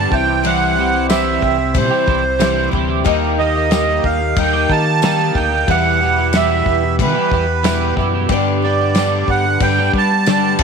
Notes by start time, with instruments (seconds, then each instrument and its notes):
Already playing: twelve-string acoustic guitar G3 D4 G4 B4, clean electric guitar G3 D4 G4, accordion A5
0.10 sub bass C2, clean electric guitar C3 E3 G3 E4 G4, twelve-string acoustic guitar G3 C4 E4 C5, harmonium C4 E4 G4 C5, upright piano G4 C5 E5, accordion G5, kick
0.28 clean electric guitar G3 E4 G4
0.44 twelve-string acoustic guitar C3 E3 G3 C4 E4 C5, clean electric guitar C3 E3 G3 E4 G4, accordion F#5, crash
0.76 clean electric guitar E3 G3 E4, twelve-string acoustic guitar G3 C4 E4 C5
0.80 clean electric guitar G4
0.94 clean electric guitar G3 E4 G4
1.09 clean electric guitar C3 E3 G3 E4 G4, twelve-string acoustic guitar G3 C4 E4 C5, accordion E5, snare, tambourine, crash
1.42 sub bass C2, twelve-string acoustic guitar G3 C4 E4 C5, kick
1.58 muted clean electric guitar stroke
1.74 twelve-string acoustic guitar C3 E3 G3 C4 E4 C5, sub bass C3, accordion C5, kick, crash
1.91 clean electric guitar G3 E4 G4
2.07 sub bass C2, clean electric guitar E3 G3 E4 G4, twelve-string acoustic guitar G3 C4 E4 C5, kick
2.25 muted clean electric guitar stroke
2.39 clean electric guitar C3 E3 G3 E4 G4, twelve-string acoustic guitar G3 C4 E4 C5, upright piano G4 C5 E5, snare, tambourine, crash
2.71 sub bass D2, clean electric guitar E3 G3 E4 G4, twelve-string acoustic guitar G3 C4 E4 C5, kick
2.88 clean electric guitar G3 E4 G4
3.04 sub bass D#2, clean electric guitar D#3 A#3 D#4 G4, twelve-string acoustic guitar D#3 G3 D#4 G4 A#4, harmonium A#3 D#4 G4 A#4, upright piano G4 A#4 D#5, kick, crash
3.38 clean electric guitar D#3 A#3 D#4 G4, twelve-string acoustic guitar G4 A#4, accordion D#5
3.42 twelve-string acoustic guitar D#4
3.56 clean electric guitar A#3 D#4 G4
3.70 clean electric guitar D#3 A#3 D#4 G4, twelve-string acoustic guitar G3 D#4 G4 A#4, snare, tambourine, crash
4.03 sub bass D#2, twelve-string acoustic guitar D#4 G4 A#4, accordion F5, kick
4.21 muted clean electric guitar stroke
4.36 sub bass D#2, twelve-string acoustic guitar D#3 G3 D#4 G4 A#4, accordion G5, kick, crash
4.53 clean electric guitar A#3 D#4 G4
4.69 clean electric guitar D#3 A#3 D#4 G4, sub bass D#3, twelve-string acoustic guitar G4 A#4, accordion A5, kick
4.74 twelve-string acoustic guitar D#4
4.87 muted clean electric guitar stroke
5.02 clean electric guitar D#3 A#3 D#4 G4, twelve-string acoustic guitar G3 D#4 G4, snare, tambourine, crash
5.07 twelve-string acoustic guitar A#4
5.35 sub bass D2, clean electric guitar D#3 A#3 D#4 G4, twelve-string acoustic guitar A#4, accordion G5, kick
5.39 twelve-string acoustic guitar D#4
5.52 clean electric guitar A#3 D#4 G4
5.67 sub bass E2, clean electric guitar E2 B2 E3 G3 E4, twelve-string acoustic guitar E3 G3 E4, harmonium B3 E4 G4 B4, upright piano G4 B4 E5, accordion F#5, kick, crash
5.71 clean electric guitar G4, twelve-string acoustic guitar G4 B4
6.01 clean electric guitar E3 G3 E4 G4, twelve-string acoustic guitar E4 G4 B4
6.18 clean electric guitar E3 G3 E4 G4
6.33 clean electric guitar E2 B2 E3 G3 E4, twelve-string acoustic guitar G3 E4 G4, accordion E5, snare, tambourine, crash
6.37 clean electric guitar G4, twelve-string acoustic guitar B4
6.66 sub bass E2, twelve-string acoustic guitar G4 B4, kick
6.70 twelve-string acoustic guitar E4
6.84 muted clean electric guitar stroke
6.99 sub bass E3, twelve-string acoustic guitar E3 G3 E4 G4 B4, accordion B4, kick, crash
7.15 clean electric guitar E3 G3 E4 G4
7.31 sub bass E2, clean electric guitar E3 G3 E4 G4, twelve-string acoustic guitar G4 B4, kick
7.36 twelve-string acoustic guitar E4
7.47 muted clean electric guitar stroke
7.63 clean electric guitar E2 B2 E3 G3 E4 G4, twelve-string acoustic guitar G3 E4, snare, tambourine, crash
7.68 twelve-string acoustic guitar G4 B4
7.96 sub bass F#2, clean electric guitar E3 G3 E4 G4, twelve-string acoustic guitar G4 B4, kick
8.02 twelve-string acoustic guitar E4
8.14 clean electric guitar E3 G3 E4 G4
8.29 sub bass G2, clean electric guitar G2 D3 G3 B3 D4 G4, twelve-string acoustic guitar G3 D4 G4, harmonium B3 D4 G4 B4, upright piano G4 B4 D5, kick, crash
8.33 twelve-string acoustic guitar B4
8.62 clean electric guitar G3 B3 D4 G4, twelve-string acoustic guitar D4 G4 B4, accordion D5
8.79 clean electric guitar G3 B3 D4 G4
8.95 clean electric guitar G2 D3 G3 B3 D4, twelve-string acoustic guitar G3 D4 G4 B4, snare, tambourine, crash
8.99 clean electric guitar G4
9.27 sub bass G2, twelve-string acoustic guitar D4 G4 B4, accordion F#5, kick
9.46 muted clean electric guitar stroke
9.60 sub bass G2, twelve-string acoustic guitar G3 D4 G4 B4, accordion G5, kick, crash
9.78 clean electric guitar G3 B3 D4 G4
9.93 sub bass G3, clean electric guitar G3 B3 D4, twelve-string acoustic guitar G4 B4, kick
9.97 twelve-string acoustic guitar D4, clean electric guitar G4, accordion A5
10.12 muted clean electric guitar stroke
10.26 clean electric guitar G2 D3 G3 B3 D4 G4, twelve-string acoustic guitar G3 D4 G4 B4, snare, tambourine, crash
10.58 sub bass C2, clean electric guitar C3 E3, upright piano G4 C5, twelve-string acoustic guitar C5, kick, crash